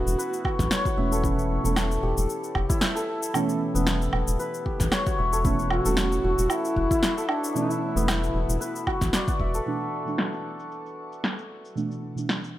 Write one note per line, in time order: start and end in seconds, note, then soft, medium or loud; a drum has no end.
0.00 0.96 B2 medium
0.00 0.97 E3 medium
0.00 0.98 A3 medium
0.00 3.68 B3 medium
0.00 0.98 C#4 loud
0.00 1.24 E4 loud
0.00 0.45 F#4 medium
0.00 0.97 F#4 loud
0.00 1.12 A4 medium
0.00 0.90 E5 medium
0.06 0.15 E1 loud
0.06 cabasa medium
0.18 2.92 B4 medium
0.18 cabasa medium
0.33 cabasa soft
0.45 0.85 F#4 medium
0.45 kick medium
0.45 low woodblock medium
0.59 0.68 A1 loud
0.59 kick loud
0.59 snare soft
0.59 cabasa medium
0.71 3.26 C#5 loud
0.71 snare loud
0.71 cabasa medium
0.85 2.09 F#4 medium
0.85 kick loud
0.85 cabasa soft
0.96 1.58 E1 loud
0.96 1.20 B2 medium
0.96 1.21 E3 medium
0.96 1.21 A3 medium
0.96 1.21 C#4 medium
0.96 2.81 E5 medium
1.12 1.64 A4 medium
1.12 cabasa medium
1.22 1.60 B2 medium
1.22 1.61 E3 medium
1.22 1.61 A3 medium
1.22 1.61 C#4 loud
1.22 2.69 E4 medium
1.22 kick loud
1.22 cabasa medium
1.39 cabasa soft
1.63 1.98 E1 loud
1.63 3.30 B2 medium
1.63 3.31 E3 medium
1.63 3.32 A3 medium
1.63 3.32 C#4 medium
1.63 2.95 A4 medium
1.63 cabasa medium
1.76 snare loud
1.76 cabasa medium
1.76 low woodblock medium
1.91 cabasa soft
2.03 2.13 E1 medium
2.03 2.55 G4 medium
2.17 2.26 E1 loud
2.17 cabasa medium
2.29 cabasa medium
2.44 cabasa soft
2.55 2.66 E1 medium
2.55 4.65 G4 medium
2.55 kick medium
2.55 low woodblock medium
2.69 5.44 E4 loud
2.69 kick loud
2.69 cabasa medium
2.81 5.11 E5 medium
2.81 snare loud
2.81 cabasa medium
2.95 5.32 A4 medium
2.95 cabasa soft
3.23 cabasa medium
3.34 3.71 B2 medium
3.34 3.72 E3 medium
3.34 3.72 A3 medium
3.34 3.72 C#4 loud
3.34 cabasa medium
3.34 low woodblock medium
3.49 cabasa soft
3.73 4.08 E1 medium
3.73 5.41 B2 medium
3.73 5.42 E3 medium
3.73 5.42 A3 medium
3.73 7.89 B3 medium
3.73 cabasa medium
3.77 5.43 C#4 medium
3.87 snare loud
3.87 cabasa medium
4.02 cabasa soft
4.13 4.24 E1 medium
4.13 low woodblock medium
4.28 4.37 E1 loud
4.28 cabasa medium
4.39 7.13 B4 medium
4.39 cabasa medium
4.54 cabasa soft
4.66 5.12 G4 medium
4.66 kick medium
4.80 4.89 A1 loud
4.80 kick loud
4.80 snare soft
4.80 cabasa medium
4.92 7.47 C#5 loud
4.92 snare loud
4.92 cabasa medium
4.92 low woodblock medium
5.06 6.24 F#4 medium
5.06 kick loud
5.06 cabasa soft
5.18 5.80 E1 loud
5.18 7.03 E5 medium
5.33 5.85 A4 medium
5.33 cabasa medium
5.44 5.82 B2 loud
5.44 5.82 E3 medium
5.44 5.82 A3 medium
5.44 5.83 C#4 loud
5.44 6.90 E4 medium
5.44 kick loud
5.44 cabasa medium
5.59 cabasa soft
5.70 6.52 F#4 loud
5.70 low woodblock medium
5.84 6.19 E1 loud
5.84 7.52 B2 medium
5.84 7.52 E3 medium
5.84 7.53 A3 medium
5.84 7.54 C#4 medium
5.84 7.17 A4 medium
5.84 cabasa medium
5.97 snare loud
5.97 cabasa medium
6.12 cabasa soft
6.24 6.35 E1 medium
6.24 6.76 F#4 medium
6.38 6.47 E1 medium
6.38 cabasa medium
6.50 7.31 E4 loud
6.50 cabasa medium
6.50 low woodblock medium
6.65 cabasa soft
6.76 6.87 E1 medium
6.76 8.87 F#4 medium
6.76 kick medium
6.91 10.39 E4 loud
6.91 kick loud
6.91 cabasa medium
7.03 9.33 E5 medium
7.03 snare loud
7.03 cabasa medium
7.17 9.54 A4 medium
7.17 cabasa soft
7.29 7.58 D4 loud
7.29 low woodblock medium
7.44 cabasa medium
7.55 7.92 B2 medium
7.55 7.92 E3 medium
7.55 7.93 A3 medium
7.55 7.93 C#4 loud
7.55 9.14 E4 medium
7.55 cabasa medium
7.71 cabasa soft
7.94 8.29 E1 loud
7.94 9.62 B2 medium
7.94 9.63 E3 medium
7.94 9.64 A3 medium
7.94 12.10 B3 medium
7.94 cabasa medium
8.08 snare loud
8.08 cabasa medium
8.08 low woodblock medium
8.24 cabasa soft
8.34 8.45 E1 medium
8.49 8.57 E1 loud
8.49 cabasa medium
8.61 11.34 B4 medium
8.61 cabasa medium
8.76 cabasa soft
8.87 9.28 F#4 medium
8.87 kick medium
8.87 low woodblock medium
9.01 9.10 A1 loud
9.01 kick loud
9.01 snare soft
9.01 cabasa medium
9.13 11.60 D5 loud
9.13 snare loud
9.13 cabasa medium
9.28 12.53 F#4 medium
9.28 kick loud
9.28 cabasa soft
9.40 9.60 E1 loud
9.40 11.70 E5 medium
9.40 kick medium
9.54 12.47 A4 medium
9.54 cabasa medium
9.66 10.03 B2 medium
9.66 10.03 E3 medium
9.66 10.04 A3 medium
9.66 10.04 D4 medium
9.66 cabasa soft
9.81 cabasa soft
10.05 11.72 B2 medium
10.05 11.73 E3 medium
10.05 11.74 A3 medium
10.05 11.74 D4 medium
10.05 cabasa medium
10.18 snare loud
10.18 cabasa soft
10.33 cabasa soft
10.59 cabasa medium
10.72 cabasa soft
10.86 cabasa soft
11.12 cabasa medium
11.24 snare medium
11.24 cabasa soft
11.39 cabasa soft
11.65 cabasa medium
11.75 12.13 B2 medium
11.75 12.13 E3 medium
11.75 12.14 A3 medium
11.75 12.14 D4 medium
11.75 cabasa soft
11.91 cabasa soft
12.15 12.59 B2 medium
12.15 12.59 E3 medium
12.15 12.59 A3 medium
12.15 12.59 D4 medium
12.15 cabasa medium
12.29 snare loud
12.29 cabasa medium
12.44 cabasa soft